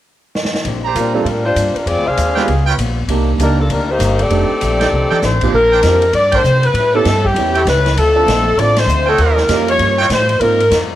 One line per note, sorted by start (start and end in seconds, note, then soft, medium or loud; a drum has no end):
0.35 snare medium
0.45 snare medium
0.55 snare medium
0.65 0.94 A#1 medium
0.65 0.86 A#2 soft
0.65 0.86 G3 medium
0.65 0.87 C4 medium
0.65 0.87 D4 medium
0.65 ride soft
0.85 1.25 G4 medium
0.85 1.24 C5 medium
0.85 1.24 D5 medium
0.85 1.24 A#5 medium
0.95 1.24 A#2 medium
0.95 1.17 A#2 medium
0.95 1.14 G3 medium
0.95 1.17 G3 medium
0.95 1.17 C4 medium
0.95 1.14 D4 medium
0.95 1.17 D4 medium
0.95 1.14 F4 medium
0.95 1.14 A#4 medium
0.95 hi-hat pedal soft
0.95 ride medium
1.14 1.26 F3 soft
1.14 1.25 G3 medium
1.14 1.26 A#3 medium
1.14 1.25 C4 soft
1.14 1.25 D4 soft
1.14 1.25 D4 medium
1.14 1.25 F4 medium
1.14 1.26 A4 medium
1.25 1.55 A2 medium
1.25 1.46 A#2 soft
1.25 1.45 G3 medium
1.25 1.47 G3 soft
1.25 1.45 D4 medium
1.25 1.45 F4 medium
1.25 1.46 A#4 medium
1.25 ride soft
1.29 1.48 C4 soft
1.29 1.48 D4 soft
1.46 1.74 G3 medium
1.46 1.74 D4 medium
1.46 1.74 F4 medium
1.46 1.74 C5 medium
1.55 1.74 G2 medium
1.55 1.77 A#2 medium
1.55 1.78 G3 soft
1.55 1.78 C4 medium
1.55 1.78 D4 medium
1.55 hi-hat pedal medium
1.55 ride medium
1.75 1.88 G3 medium
1.75 1.88 D4 medium
1.75 1.86 F4 medium
1.75 1.88 A#4 medium
1.75 muted upright bass stroke soft
1.75 ride soft
1.86 1.97 F2 medium
1.86 2.08 D3 soft
1.86 2.08 G#3 soft
1.86 2.07 C4 medium
1.86 2.09 C4 soft
1.86 2.06 F4 medium
1.86 2.07 G#4 medium
1.86 2.06 D5 medium
1.86 ride medium
1.90 2.09 F4 soft
1.97 2.06 D2 medium
2.07 2.17 C2 medium
2.07 2.48 D4 medium
2.07 2.68 G#4 medium
2.07 2.49 C5 medium
2.07 2.67 F5 medium
2.17 2.47 D#2 medium
2.17 2.38 D3 soft
2.17 2.39 G#3 medium
2.17 2.39 C4 medium
2.17 2.39 F4 medium
2.17 hi-hat pedal medium
2.17 ride medium
2.36 2.47 G#3 medium
2.36 2.47 B3 medium
2.36 2.44 F4 medium
2.36 2.47 F4 soft
2.36 2.48 G4 medium
2.36 2.44 B4 medium
2.36 2.44 C#5 medium
2.36 2.44 G5 medium
2.36 snare soft
2.48 2.77 C#2 medium
2.48 2.68 C#3 soft
2.48 2.69 G3 soft
2.48 2.70 B3 soft
2.48 2.70 F4 medium
2.48 ride soft
2.67 2.75 F4 medium
2.67 2.75 B4 medium
2.67 2.75 C#5 medium
2.67 2.75 G5 loud
2.78 3.08 A#1 medium
2.78 2.99 C#3 medium
2.78 3.00 G3 medium
2.78 3.00 B3 medium
2.78 3.00 F4 medium
2.78 hi-hat pedal soft
2.78 ride medium
3.08 3.38 C2 medium
3.08 3.29 C3 soft
3.08 3.30 D#3 medium
3.08 3.38 A#3 soft
3.08 3.30 A#3 medium
3.08 3.38 D4 soft
3.08 3.31 D4 medium
3.08 3.38 D#4 soft
3.08 3.38 G4 medium
3.08 ride medium
3.38 3.68 C#2 medium
3.38 3.60 C3 medium
3.38 3.60 D#3 medium
3.38 3.57 A#3 medium
3.38 3.60 A#3 medium
3.38 3.57 D4 soft
3.38 3.60 D4 medium
3.38 3.57 D#4 soft
3.38 3.59 D#4 medium
3.38 3.57 G4 medium
3.38 hi-hat pedal soft
3.38 ride medium
3.43 3.59 G3 medium
3.43 3.59 D4 medium
3.43 3.59 A#4 medium
3.60 3.71 F3 medium
3.60 3.71 A#3 medium
3.60 3.70 D4 medium
3.60 3.71 A4 medium
3.69 3.98 D2 medium
3.69 3.90 C3 soft
3.69 3.90 D#3 soft
3.69 3.90 G3 medium
3.69 3.91 A#3 soft
3.69 3.90 D4 medium
3.69 3.91 D4 soft
3.69 3.89 D#4 medium
3.69 3.91 A#4 medium
3.69 ride medium
3.90 4.20 A#3 medium
3.90 4.20 D#4 medium
3.90 4.20 G4 medium
3.90 4.20 C5 loud
3.99 4.29 G1 medium
3.99 4.21 C3 soft
3.99 4.21 D#3 medium
3.99 4.22 A#3 medium
3.99 hi-hat pedal medium
3.99 ride medium
4.03 4.22 D4 medium
4.19 5.43 C4 medium
4.19 5.43 G4 medium
4.19 5.42 A4 medium
4.19 5.43 D5 loud
4.19 ride soft
4.30 4.48 F1 medium
4.30 4.51 F2 soft
4.30 4.52 D#3 soft
4.30 4.48 A3 soft
4.30 4.53 A3 soft
4.30 4.48 D4 soft
4.30 4.48 D#4 soft
4.30 4.48 G4 medium
4.30 ride medium
4.34 4.53 D4 soft
4.61 4.91 A#1 medium
4.61 4.82 F2 medium
4.61 4.83 D#3 medium
4.61 4.83 A3 medium
4.61 4.83 D4 medium
4.61 hi-hat pedal soft
4.61 ride medium
4.80 4.88 D#4 medium
4.80 4.88 A4 medium
4.80 4.88 D5 medium
4.80 4.88 G5 medium
4.80 snare soft
4.80 ride soft
4.92 5.10 C2 medium
4.92 5.12 F2 soft
4.92 5.13 D#3 soft
4.92 5.13 A3 medium
4.92 5.14 D4 soft
5.11 5.19 D#4 medium
5.11 5.18 A4 medium
5.11 5.19 D5 medium
5.11 5.19 G5 medium
5.11 muted upright bass stroke soft
5.11 high tom soft
5.22 5.52 A1 medium
5.22 5.42 F2 medium
5.22 5.43 D#3 medium
5.22 5.43 A3 medium
5.22 5.43 D4 medium
5.22 5.51 C5 loud
5.22 snare soft
5.22 hi-hat pedal medium
5.41 5.53 A#2 medium
5.41 5.53 C4 medium
5.41 5.53 D4 medium
5.41 5.53 F4 soft
5.41 5.53 G4 medium
5.41 kick medium
5.41 crash medium
5.52 5.82 A#1 medium
5.52 5.74 A#2 soft
5.52 5.74 G3 soft
5.52 5.75 C4 soft
5.52 6.11 A#4 loud
5.57 5.75 D4 medium
5.72 5.80 D4 medium
5.72 5.80 A#4 medium
5.72 5.80 C5 medium
5.72 5.80 G5 medium
5.83 6.12 F2 medium
5.83 6.04 A#2 medium
5.83 6.04 G3 medium
5.83 6.04 C4 medium
5.83 6.02 C4 soft
5.83 6.04 D4 medium
5.83 6.02 D4 soft
5.83 6.02 F4 soft
5.83 6.02 G4 soft
5.83 snare medium
5.83 hi-hat pedal medium
5.83 ride medium
6.02 ride soft
6.13 6.43 G2 medium
6.13 6.34 A#2 soft
6.13 6.34 G3 soft
6.13 6.35 C4 soft
6.13 6.35 D4 soft
6.13 6.32 D5 medium
6.13 ride medium
6.32 6.40 D4 medium
6.32 6.40 A#4 medium
6.32 6.40 C5 medium
6.32 6.65 C5 medium
6.32 6.40 G5 medium
6.32 kick medium
6.32 ride medium
6.44 6.65 A#2 soft
6.44 6.73 C3 medium
6.44 6.65 G3 soft
6.44 6.65 C4 medium
6.44 6.66 D4 medium
6.44 hi-hat pedal medium
6.63 6.95 B4 medium
6.63 ride soft
6.73 7.04 A2 medium
6.73 6.96 A2 soft
6.73 ride medium
6.78 6.97 G3 soft
6.78 6.97 C#4 soft
6.78 6.97 E4 medium
6.95 7.05 B3 medium
6.95 7.05 C#4 medium
6.95 7.05 E4 medium
6.95 7.05 G4 medium
6.95 7.25 A4 loud
7.05 7.34 G2 medium
7.05 7.26 A2 medium
7.05 7.27 G3 medium
7.05 7.27 C#4 medium
7.05 snare medium
7.05 hi-hat pedal medium
7.05 ride medium
7.09 7.27 E4 medium
7.25 7.67 G4 medium
7.25 kick soft
7.34 7.65 E2 medium
7.34 7.56 A2 soft
7.34 7.57 G3 soft
7.34 7.54 B3 soft
7.34 7.57 C#4 soft
7.34 7.54 C#4 soft
7.34 7.54 E4 soft
7.34 7.57 E4 medium
7.34 7.54 G4 soft
7.34 ride medium
7.55 7.63 E4 medium
7.55 7.63 A4 medium
7.55 7.63 C#5 medium
7.55 7.63 G5 medium
7.55 ride soft
7.65 7.95 C#2 medium
7.65 7.87 A2 medium
7.65 7.87 G3 medium
7.65 7.87 C#4 medium
7.65 7.87 E4 medium
7.65 snare medium
7.65 hi-hat pedal soft
7.65 ride medium
7.70 7.96 B4 medium
7.86 snare soft
7.86 ride soft
7.97 8.26 D2 medium
7.97 8.18 D3 soft
7.97 8.18 A3 soft
7.97 8.18 C4 medium
7.97 8.59 A4 loud
7.97 ride medium
8.01 8.19 F4 medium
8.16 8.26 C4 medium
8.16 8.26 D4 medium
8.16 8.26 F4 medium
8.16 8.26 A4 medium
8.26 8.56 A#1 medium
8.26 8.47 D3 soft
8.26 8.47 A3 medium
8.26 8.48 C4 medium
8.26 8.48 F4 medium
8.26 snare medium
8.26 hi-hat pedal medium
8.26 ride medium
8.57 8.86 A1 medium
8.57 8.78 D3 soft
8.57 8.78 A3 soft
8.57 8.76 C4 soft
8.57 8.79 C4 soft
8.57 8.76 D4 soft
8.57 8.76 F4 soft
8.57 8.79 F4 soft
8.57 8.76 A4 medium
8.57 8.77 D5 medium
8.57 ride medium
8.76 9.08 C5 loud
8.76 snare medium
8.76 ride medium
8.86 9.17 D2 medium
8.86 9.08 D3 medium
8.86 9.08 A3 medium
8.86 9.09 C4 medium
8.86 9.09 F4 medium
8.86 hi-hat pedal medium
9.06 9.46 F4 medium
9.06 9.18 A4 medium
9.06 9.46 C#5 medium
9.06 9.46 D#5 medium
9.06 9.46 G5 medium
9.17 9.48 D#2 medium
9.17 9.38 D#3 soft
9.17 9.39 G3 medium
9.17 9.39 C#4 soft
9.17 9.40 F4 medium
9.17 9.69 A#4 loud
9.17 ride medium
9.37 snare soft
9.48 9.78 F2 medium
9.48 9.69 D#3 medium
9.48 9.69 G3 medium
9.48 9.95 A#3 medium
9.48 9.69 C#4 medium
9.48 9.95 C#4 soft
9.48 9.69 F4 medium
9.48 9.95 F4 soft
9.48 9.95 G4 medium
9.48 snare medium
9.48 hi-hat pedal medium
9.48 ride medium
9.68 10.08 C#5 medium
9.68 ride soft
9.79 10.09 G2 medium
9.79 9.99 D#3 soft
9.79 10.00 G3 soft
9.79 10.00 C#4 soft
9.79 10.01 F4 soft
9.79 ride medium
9.99 10.06 F4 medium
9.99 10.06 C#5 medium
9.99 10.06 D#5 medium
9.99 10.06 G5 loud
10.10 10.39 A2 medium
10.10 10.30 D#3 medium
10.10 10.30 G3 medium
10.10 10.31 C#4 medium
10.10 10.31 F4 medium
10.10 10.40 C5 medium
10.10 snare medium
10.10 hi-hat pedal medium
10.10 ride medium
10.29 ride soft
10.40 10.60 G#2 soft
10.40 10.70 G#2 medium
10.40 10.61 F3 medium
10.40 10.58 A#3 soft
10.40 10.58 C4 soft
10.40 10.61 C4 medium
10.40 10.58 D#4 soft
10.40 10.62 D#4 soft
10.40 10.58 F4 medium
10.40 10.75 A#4 loud
10.40 ride medium
10.60 ride soft
10.70 10.95 F2 medium
10.70 10.91 G#2 medium
10.70 10.92 F3 medium
10.70 10.92 C4 medium
10.70 10.92 D#4 medium
10.70 snare medium
10.70 hi-hat pedal medium
10.70 ride medium